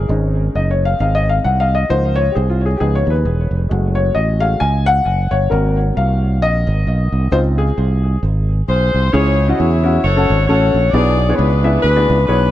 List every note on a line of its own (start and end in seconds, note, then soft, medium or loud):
0.09 0.47 G#1 loud
0.09 0.95 G#3 medium
0.09 0.96 C#4 soft
0.09 0.96 D#4 medium
0.55 0.93 F#1 medium
0.55 0.69 D#5 medium
0.71 0.85 C#5 medium
0.85 0.99 F5 medium
0.99 1.38 G#1 medium
0.99 1.67 G#3 soft
0.99 1.67 C4 soft
0.99 1.67 D#4 medium
0.99 1.14 F5 medium
1.15 1.29 D#5 medium
1.29 1.34 F5 medium
1.44 1.83 C2 medium
1.44 1.58 F#5 medium
1.60 1.74 F5 loud
1.75 1.89 D#5 medium
1.89 2.28 C#2 medium
1.89 2.21 F3 medium
1.89 2.21 A#3 soft
1.89 2.22 D#4 medium
1.89 2.16 C5 loud
2.16 2.32 C#5 loud
2.32 2.35 G4 medium
2.32 2.50 G#4 medium
2.36 2.74 C2 loud
2.50 2.65 F4 medium
2.66 2.77 G#4 medium
2.77 3.12 F3 soft
2.77 3.12 B3 soft
2.77 2.80 G4 medium
2.77 2.94 G#4 medium
2.81 3.02 C#2 medium
2.81 3.12 D#4 medium
2.95 3.11 C#5 medium
3.07 3.23 D#2 medium
3.07 3.52 B4 medium
3.25 3.47 E1 medium
3.51 3.67 F1 medium
3.69 4.09 F#1 loud
3.69 4.37 G#3 medium
3.69 4.37 A3 soft
3.69 4.38 F#4 medium
3.95 4.16 C#5 medium
4.15 4.54 A1 medium
4.15 4.39 D#5 medium
4.40 4.58 G#3 medium
4.40 4.58 A3 soft
4.40 4.58 F#4 medium
4.40 4.61 F5 loud
4.60 4.99 C#2 medium
4.60 4.84 G#5 loud
4.86 5.33 F#5 loud
5.06 5.28 F#1 medium
5.31 5.48 G1 medium
5.31 5.51 C#5 loud
5.50 5.90 G#1 loud
5.50 7.27 A#3 medium
5.50 7.27 C4 medium
5.50 7.28 F#4 medium
5.50 5.75 A#4 medium
5.97 6.42 C2 loud
5.97 6.39 F5 medium
6.42 6.64 A#1 medium
6.42 7.35 D#5 loud
6.67 6.84 G#1 loud
6.87 7.09 B1 medium
7.12 7.29 C2 medium
7.32 7.70 C#2 loud
7.32 7.64 C4 medium
7.32 7.64 D#4 medium
7.32 7.64 F4 medium
7.32 7.38 C5 loud
7.58 8.18 G#4 medium
7.78 8.16 C2 medium
8.23 8.61 G#1 medium
8.68 8.90 B1 medium
8.68 9.10 F4 medium
8.68 9.10 G#4 medium
8.68 9.10 C5 medium
8.94 9.10 C2 medium
9.13 9.52 C#2 loud
9.13 9.80 C#3 medium
9.13 9.34 C#4 medium
9.13 9.34 E4 medium
9.13 10.00 E4 medium
9.13 9.34 G#4 loud
9.13 9.57 G#4 medium
9.13 9.48 C#5 loud
9.48 9.66 C#4 medium
9.48 9.66 E4 medium
9.48 9.66 F#4 medium
9.48 9.57 D#5 medium
9.57 9.97 E2 medium
9.57 10.00 G#4 medium
9.57 10.00 C#5 medium
9.57 10.03 E5 medium
9.84 9.99 C#4 medium
9.84 9.99 E4 medium
9.84 10.00 F#4 medium
10.03 10.25 F#1 loud
10.03 10.48 F#4 medium
10.03 10.48 A4 medium
10.03 10.46 C#5 loud
10.16 10.35 C#4 medium
10.16 10.35 F#4 medium
10.16 10.35 A4 medium
10.30 10.46 G#1 loud
10.47 10.70 A1 medium
10.47 10.76 C#4 medium
10.47 10.76 F#4 medium
10.47 10.91 F#4 medium
10.47 10.76 A4 medium
10.47 10.91 A4 medium
10.47 10.89 C#5 medium
10.74 10.90 A#1 medium
10.91 11.31 B1 loud
10.91 11.60 B2 medium
10.91 11.14 B3 medium
10.91 11.14 D4 medium
10.91 11.15 E4 medium
10.91 11.37 G#4 medium
10.91 11.15 G#4 medium
10.91 11.37 D5 loud
10.91 11.14 D5 medium
11.29 11.47 B3 medium
11.29 11.47 D4 medium
11.29 11.47 E4 medium
11.29 11.47 G#4 medium
11.29 11.47 C#5 medium
11.36 11.77 C#2 loud
11.36 11.83 D4 medium
11.36 11.83 G#4 medium
11.36 11.81 B4 medium
11.64 11.80 B3 medium
11.64 11.80 D4 medium
11.64 11.80 E4 medium
11.64 11.80 G#4 medium
11.64 11.80 E5 medium
11.82 12.05 D2 medium
11.82 12.28 D4 medium
11.82 12.28 G#4 medium
11.82 12.24 B4 loud
11.96 12.15 B3 medium
11.96 12.15 D4 medium
11.96 12.15 E4 medium
11.96 12.15 G#4 medium
11.96 12.15 D5 medium
12.10 12.26 C#2 loud
12.27 12.50 B1 medium
12.27 12.51 B3 medium
12.27 12.51 D4 medium
12.27 12.51 E4 medium
12.27 12.51 G#4 medium
12.27 12.51 B4 medium
12.27 12.51 C#5 medium